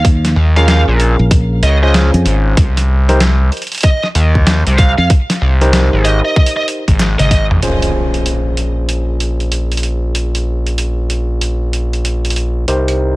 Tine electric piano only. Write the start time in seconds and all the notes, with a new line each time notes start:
0.56 C#4 F4 G#4 A#4
1.82 C#4 F4 G#4 C5
3.09 D#4 G4 A#4 C5
5.61 D#4 G4 A#4 C5
7.63 C#4 F4 G#4 C5
12.68 D#4 G4 A#4 C5